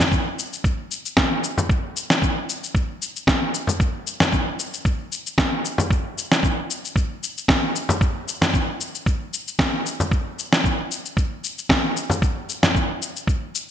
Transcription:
0.00 frame drum medium
0.00 cabasa soft
0.12 kick loud
0.12 cabasa soft
0.39 cabasa medium
0.53 cabasa soft
0.64 kick loud
0.64 cabasa soft
0.91 cabasa medium
1.06 cabasa soft
1.17 kick loud
1.17 snare medium
1.17 cabasa soft
1.44 cabasa medium
1.58 frame drum loud
1.58 cabasa soft
1.69 kick loud
1.69 cabasa soft
1.97 cabasa medium
2.10 snare medium
2.10 cabasa soft
2.22 kick loud
2.22 cabasa soft
2.50 cabasa medium
2.64 cabasa soft
2.75 kick loud
2.75 cabasa soft
3.02 cabasa medium
3.16 cabasa soft
3.27 kick loud
3.27 snare medium
3.27 cabasa soft
3.54 cabasa medium
3.67 frame drum medium
3.67 cabasa medium
3.80 kick loud
3.80 cabasa soft
4.07 cabasa medium
4.20 snare medium
4.20 frame drum medium
4.20 cabasa soft
4.33 kick loud
4.33 cabasa soft
4.60 cabasa medium
4.74 cabasa soft
4.85 kick loud
4.85 cabasa soft
5.12 cabasa medium
5.27 cabasa soft
5.38 kick loud
5.38 snare medium
5.38 cabasa soft
5.65 cabasa medium
5.78 frame drum loud
5.78 cabasa soft
5.91 kick loud
5.91 cabasa soft
6.18 cabasa medium
6.32 snare medium
6.32 cabasa soft
6.43 kick loud
6.43 cabasa soft
6.71 cabasa medium
6.85 cabasa soft
6.96 kick loud
6.96 cabasa soft
7.23 cabasa medium
7.38 cabasa soft
7.48 kick loud
7.48 snare medium
7.48 cabasa soft
7.76 cabasa medium
7.89 frame drum loud
7.89 cabasa soft
8.01 kick loud
8.01 cabasa soft
8.28 cabasa medium
8.41 snare medium
8.41 frame drum medium
8.41 cabasa soft
8.54 kick loud
8.54 cabasa soft
8.81 cabasa medium
8.95 cabasa soft
9.06 kick loud
9.06 cabasa soft
9.34 cabasa medium
9.48 cabasa soft
9.59 kick loud
9.59 snare medium
9.59 cabasa soft
9.86 cabasa medium
10.00 frame drum loud
10.00 cabasa soft
10.11 kick loud
10.11 cabasa soft
10.39 cabasa medium
10.53 snare medium
10.53 cabasa soft
10.64 kick loud
10.64 cabasa soft
10.91 cabasa medium
11.06 cabasa soft
11.17 kick loud
11.17 cabasa soft
11.44 cabasa medium
11.58 cabasa soft
11.69 kick loud
11.69 snare medium
11.69 cabasa soft
11.97 cabasa medium
12.10 frame drum loud
12.10 cabasa soft
12.22 kick loud
12.22 cabasa soft
12.49 cabasa medium
12.63 snare medium
12.63 frame drum medium
12.63 cabasa soft
12.75 kick medium
12.75 cabasa soft
13.02 cabasa medium
13.16 cabasa soft
13.27 kick loud
13.27 cabasa soft
13.55 cabasa medium

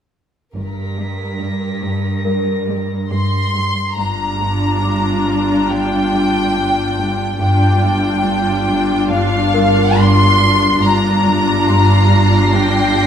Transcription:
0.53 1.36 G1 soft
0.53 0.80 G2 soft
0.53 3.74 G2 soft
0.53 3.07 A#4 soft
0.53 2.11 A#6 soft
0.53 2.11 B6 soft
0.97 1.23 G3 soft
1.39 1.65 G2 soft
1.82 2.07 G2 soft
2.11 2.63 A#6 soft
2.25 2.50 G2 soft
2.25 3.94 A#4 soft
2.68 2.94 G3 soft
3.10 3.37 G2 soft
3.10 3.94 C6 medium
3.54 3.81 G2 soft
3.98 7.37 G1 soft
3.98 4.23 G2 soft
3.98 7.37 G2 soft
3.98 7.37 D4 soft
3.98 7.37 F4 soft
3.98 5.70 A#5 soft
4.40 4.66 G2 soft
4.84 5.09 G2 soft
4.84 7.38 D6 soft
5.26 5.52 G2 soft
5.69 5.95 G2 soft
5.69 7.40 G5 medium
6.13 6.38 G3 soft
6.55 6.81 G2 soft
6.98 7.24 G2 soft
7.40 10.79 G1 soft
7.40 10.79 G2 soft
7.40 7.66 G2 soft
7.40 10.78 D4 soft
7.40 10.79 F4 soft
7.40 9.08 G5 medium
7.84 8.09 G2 soft
8.25 8.51 G2 soft
8.68 8.94 G2 soft
9.10 9.36 G2 medium
9.10 9.98 F5 medium
9.53 9.79 G3 soft
9.53 12.06 A#4 soft
9.97 10.23 G2 soft
9.97 10.83 C6 medium
10.40 10.65 G2 soft
10.81 13.07 G1 soft
10.81 13.07 G2 soft
10.81 11.08 G2 soft
10.81 13.07 D4 soft
10.81 13.07 F4 soft
10.81 12.53 A#5 medium
10.81 13.07 A#6 soft
11.26 11.51 G2 soft
11.67 11.93 G2 soft
11.67 13.07 C6 soft
11.67 13.07 C7 soft
12.10 12.35 G2 soft
12.52 12.78 G2 soft
12.52 13.07 G5 medium
12.94 13.07 G3 soft

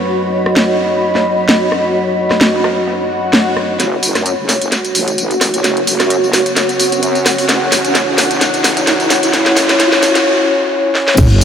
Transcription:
0.00 3.76 F#3 medium
0.00 3.76 F#4 medium
0.00 3.78 F#4 medium
0.00 3.80 C#5 medium
0.00 3.82 B5 medium
0.10 3.78 D#5 medium
0.10 tambourine medium
0.34 tambourine medium
0.46 cross-stick medium
0.46 closed hi-hat soft
0.56 snare loud
0.80 tambourine medium
1.03 tambourine medium
1.15 snare loud
1.15 snare soft
1.38 tambourine medium
1.49 snare loud
1.72 cross-stick medium
1.72 tambourine medium
1.84 closed hi-hat soft
1.95 tambourine medium
2.19 tambourine medium
2.31 cross-stick medium
2.31 snare soft
2.41 snare loud
2.54 snare soft
2.64 cross-stick medium
2.64 snare loud
2.64 tambourine medium
2.87 snare soft
2.87 tambourine medium
2.87 swell medium
3.11 tambourine medium
3.33 snare loud
3.46 closed hi-hat soft
3.56 cross-stick medium
3.56 tambourine medium
3.70 closed hi-hat soft
3.79 4.13 F#1 medium
3.79 11.14 C#4 medium
3.79 10.26 F#4 medium
3.79 7.45 F#4 medium
3.79 11.14 C#5 medium
3.79 snare soft
3.79 closed hi-hat medium
3.79 tambourine soft
3.79 riser medium
4.03 10.26 C#5 medium
4.03 open hi-hat loud
4.03 tambourine medium
4.15 4.36 F#2 medium
4.15 cross-stick medium
4.15 snare soft
4.15 closed hi-hat medium
4.15 tambourine soft
4.26 closed hi-hat medium
4.26 tambourine soft
4.38 4.59 F#1 medium
4.49 snare soft
4.49 open hi-hat loud
4.49 tambourine medium
4.62 4.70 F#1 medium
4.62 closed hi-hat medium
4.62 tambourine soft
4.72 snare medium
4.72 closed hi-hat medium
4.72 tambourine soft
4.85 closed hi-hat soft
4.85 tambourine soft
4.95 5.40 A1 loud
4.95 open hi-hat loud
4.95 tambourine medium
5.06 10.26 F#5 medium
5.06 closed hi-hat medium
5.06 tambourine soft
5.18 closed hi-hat medium
5.18 tambourine soft
5.31 closed hi-hat soft
5.31 tambourine soft
5.41 5.63 A1 medium
5.41 cross-stick medium
5.41 snare medium
5.41 open hi-hat loud
5.41 tambourine medium
5.54 closed hi-hat medium
5.54 tambourine soft
5.64 5.98 F#1 medium
5.64 snare medium
5.64 closed hi-hat medium
5.64 tambourine soft
5.77 closed hi-hat soft
5.87 open hi-hat loud
5.87 tambourine medium
6.00 6.21 F#2 medium
6.00 cross-stick medium
6.00 snare medium
6.00 closed hi-hat medium
6.00 tambourine soft
6.10 closed hi-hat medium
6.10 tambourine soft
6.23 6.44 F#1 loud
6.23 tambourine soft
6.33 cross-stick medium
6.33 snare medium
6.33 open hi-hat loud
6.33 tambourine medium
6.46 closed hi-hat medium
6.46 tambourine soft
6.57 snare medium
6.57 closed hi-hat medium
6.57 tambourine soft
6.69 closed hi-hat soft
6.69 tambourine soft
6.80 open hi-hat loud
6.80 tambourine medium
6.92 7.36 F#2 medium
6.92 closed hi-hat medium
6.92 tambourine soft
7.03 closed hi-hat medium
7.03 tambourine soft
7.15 closed hi-hat soft
7.15 tambourine soft
7.26 cross-stick medium
7.26 snare medium
7.26 open hi-hat loud
7.26 tambourine medium
7.38 open hi-hat medium
7.38 tambourine soft
7.49 7.83 F#1 loud
7.49 11.14 E4 medium
7.49 snare medium
7.49 closed hi-hat medium
7.49 tambourine soft
7.72 snare medium
7.72 open hi-hat loud
7.72 tambourine medium
7.85 8.06 F#2 medium
7.85 closed hi-hat soft
7.85 tambourine soft
7.95 snare medium
7.95 closed hi-hat medium
7.95 tambourine soft
8.08 8.29 F#1 medium
8.18 snare medium
8.18 open hi-hat loud
8.18 tambourine medium
8.31 8.39 F#1 loud
8.31 closed hi-hat medium
8.31 tambourine soft
8.41 snare medium
8.41 closed hi-hat medium
8.41 tambourine soft
8.54 closed hi-hat soft
8.54 tambourine soft
8.64 9.09 A1 loud
8.64 snare medium
8.64 open hi-hat loud
8.64 tambourine medium
8.77 closed hi-hat medium
8.77 tambourine soft
8.87 snare medium
8.87 closed hi-hat medium
8.87 tambourine soft
9.00 closed hi-hat soft
9.00 tambourine soft
9.10 9.32 A1 loud
9.10 snare medium
9.10 open hi-hat loud
9.10 tambourine medium
9.23 closed hi-hat medium
9.23 tambourine soft
9.33 9.67 F#1 loud
9.33 snare loud
9.33 closed hi-hat medium
9.33 tambourine soft
9.46 snare medium
9.46 closed hi-hat soft
9.57 snare medium
9.57 open hi-hat loud
9.57 tambourine medium
9.69 9.90 F#2 medium
9.69 snare medium
9.69 closed hi-hat soft
9.69 tambourine soft
9.80 snare loud
9.80 closed hi-hat medium
9.80 tambourine soft
9.92 10.13 F#1 medium
9.92 snare medium
9.92 tambourine soft
10.03 snare loud
10.03 open hi-hat loud
10.03 tambourine medium
10.15 snare medium
10.15 closed hi-hat medium
10.15 tambourine soft
10.95 snare medium
11.08 snare medium
11.17 11.29 F#1 loud
11.17 11.44 C#4 medium
11.17 11.44 F#4 medium
11.17 11.44 C#5 medium
11.17 kick loud
11.17 closed hi-hat medium
11.17 crash loud
11.17 tambourine medium
11.17 sub drop medium
11.19 tambourine soft
11.31 11.44 F#1 loud

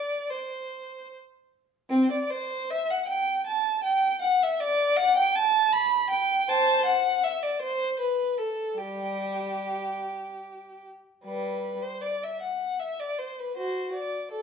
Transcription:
0.00 0.30 D5 medium
0.30 1.10 C5 medium
1.90 2.11 C4 medium
2.11 2.31 D5 medium
2.30 2.70 C5 medium
2.70 2.90 E5 medium
2.90 3.09 F#5 medium
3.07 3.45 G5 medium
3.47 3.83 A5 medium
3.83 4.20 G5 medium
4.21 4.40 F#5 loud
4.43 4.60 E5 medium
4.60 4.97 D5 loud
4.97 5.15 F#5 loud
5.16 5.34 G5 loud
5.35 5.73 A5 loud
5.73 6.10 B5 loud
6.10 6.46 G5 loud
6.49 6.83 C5 medium
6.49 6.86 A5 loud
6.85 7.22 F#5 loud
7.23 7.42 E5 medium
7.43 7.61 D5 medium
7.62 7.99 C5 medium
7.99 8.38 B4 medium
8.38 8.79 A4 medium
8.78 9.98 G3 medium
8.78 10.84 G4 medium
11.24 11.79 G3 soft
11.24 11.79 B4 medium
11.82 12.02 C5 medium
12.02 12.21 D5 medium
12.23 12.42 E5 medium
12.41 12.79 F#5 medium
12.79 12.99 E5 medium
13.00 13.19 D5 medium
13.19 13.38 C5 medium
13.40 13.58 B4 medium
13.56 13.92 F#4 soft
13.56 13.94 C5 medium
13.94 14.31 D5 medium
14.32 14.42 A4 medium

